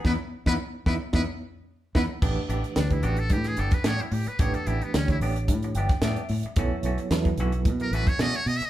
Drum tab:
CC |----------------|x---------------|----------------|----------------|
HH |----------------|--xxxxxxxxxxxxox|xxxxxxoxxxxxxxox|x-xxxxxxxxxxxxox|
SD |o--o--o-o-----o-|----o----o-oo---|----oo-----oo---|----o------oo---|
BD |o--o--o-o-----o-|o----o--o--o----|o----o--o--o----|o----o--o--o----|